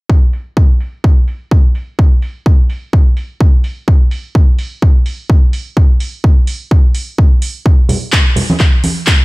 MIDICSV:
0, 0, Header, 1, 2, 480
1, 0, Start_track
1, 0, Tempo, 472441
1, 99, Time_signature, 4, 2, 24, 8
1, 9396, End_track
2, 0, Start_track
2, 0, Title_t, "Drums"
2, 97, Note_on_c, 9, 36, 105
2, 198, Note_off_c, 9, 36, 0
2, 337, Note_on_c, 9, 46, 100
2, 438, Note_off_c, 9, 46, 0
2, 577, Note_on_c, 9, 36, 109
2, 679, Note_off_c, 9, 36, 0
2, 817, Note_on_c, 9, 46, 93
2, 919, Note_off_c, 9, 46, 0
2, 1058, Note_on_c, 9, 36, 111
2, 1159, Note_off_c, 9, 36, 0
2, 1298, Note_on_c, 9, 46, 95
2, 1399, Note_off_c, 9, 46, 0
2, 1538, Note_on_c, 9, 36, 106
2, 1640, Note_off_c, 9, 36, 0
2, 1778, Note_on_c, 9, 46, 93
2, 1879, Note_off_c, 9, 46, 0
2, 2019, Note_on_c, 9, 36, 112
2, 2121, Note_off_c, 9, 36, 0
2, 2258, Note_on_c, 9, 46, 100
2, 2360, Note_off_c, 9, 46, 0
2, 2499, Note_on_c, 9, 36, 113
2, 2601, Note_off_c, 9, 36, 0
2, 2739, Note_on_c, 9, 46, 96
2, 2841, Note_off_c, 9, 46, 0
2, 2979, Note_on_c, 9, 36, 114
2, 3081, Note_off_c, 9, 36, 0
2, 3218, Note_on_c, 9, 46, 98
2, 3320, Note_off_c, 9, 46, 0
2, 3460, Note_on_c, 9, 36, 115
2, 3561, Note_off_c, 9, 36, 0
2, 3697, Note_on_c, 9, 46, 98
2, 3799, Note_off_c, 9, 46, 0
2, 3940, Note_on_c, 9, 36, 116
2, 4041, Note_off_c, 9, 36, 0
2, 4178, Note_on_c, 9, 46, 106
2, 4280, Note_off_c, 9, 46, 0
2, 4420, Note_on_c, 9, 36, 112
2, 4522, Note_off_c, 9, 36, 0
2, 4659, Note_on_c, 9, 46, 100
2, 4760, Note_off_c, 9, 46, 0
2, 4900, Note_on_c, 9, 36, 114
2, 5002, Note_off_c, 9, 36, 0
2, 5139, Note_on_c, 9, 46, 100
2, 5241, Note_off_c, 9, 46, 0
2, 5380, Note_on_c, 9, 36, 118
2, 5482, Note_off_c, 9, 36, 0
2, 5620, Note_on_c, 9, 46, 98
2, 5722, Note_off_c, 9, 46, 0
2, 5860, Note_on_c, 9, 36, 108
2, 5961, Note_off_c, 9, 36, 0
2, 6100, Note_on_c, 9, 46, 101
2, 6201, Note_off_c, 9, 46, 0
2, 6340, Note_on_c, 9, 36, 116
2, 6441, Note_off_c, 9, 36, 0
2, 6577, Note_on_c, 9, 46, 97
2, 6678, Note_off_c, 9, 46, 0
2, 6819, Note_on_c, 9, 36, 117
2, 6921, Note_off_c, 9, 36, 0
2, 7057, Note_on_c, 9, 46, 96
2, 7158, Note_off_c, 9, 46, 0
2, 7299, Note_on_c, 9, 36, 119
2, 7401, Note_off_c, 9, 36, 0
2, 7538, Note_on_c, 9, 46, 97
2, 7640, Note_off_c, 9, 46, 0
2, 7779, Note_on_c, 9, 36, 109
2, 7881, Note_off_c, 9, 36, 0
2, 7905, Note_on_c, 9, 54, 36
2, 8007, Note_off_c, 9, 54, 0
2, 8014, Note_on_c, 9, 64, 77
2, 8019, Note_on_c, 9, 46, 102
2, 8115, Note_off_c, 9, 64, 0
2, 8121, Note_off_c, 9, 46, 0
2, 8145, Note_on_c, 9, 54, 76
2, 8247, Note_off_c, 9, 54, 0
2, 8254, Note_on_c, 9, 39, 105
2, 8259, Note_on_c, 9, 36, 108
2, 8356, Note_off_c, 9, 39, 0
2, 8360, Note_off_c, 9, 36, 0
2, 8388, Note_on_c, 9, 54, 39
2, 8489, Note_off_c, 9, 54, 0
2, 8494, Note_on_c, 9, 64, 76
2, 8499, Note_on_c, 9, 46, 96
2, 8595, Note_off_c, 9, 64, 0
2, 8601, Note_off_c, 9, 46, 0
2, 8623, Note_on_c, 9, 54, 68
2, 8634, Note_on_c, 9, 63, 82
2, 8724, Note_off_c, 9, 54, 0
2, 8734, Note_on_c, 9, 39, 57
2, 8735, Note_off_c, 9, 63, 0
2, 8739, Note_on_c, 9, 36, 112
2, 8836, Note_off_c, 9, 39, 0
2, 8840, Note_off_c, 9, 36, 0
2, 8865, Note_on_c, 9, 54, 33
2, 8967, Note_off_c, 9, 54, 0
2, 8978, Note_on_c, 9, 46, 96
2, 8979, Note_on_c, 9, 63, 61
2, 9080, Note_off_c, 9, 46, 0
2, 9081, Note_off_c, 9, 63, 0
2, 9111, Note_on_c, 9, 54, 65
2, 9213, Note_off_c, 9, 54, 0
2, 9213, Note_on_c, 9, 39, 105
2, 9219, Note_on_c, 9, 36, 112
2, 9315, Note_off_c, 9, 39, 0
2, 9320, Note_off_c, 9, 36, 0
2, 9396, End_track
0, 0, End_of_file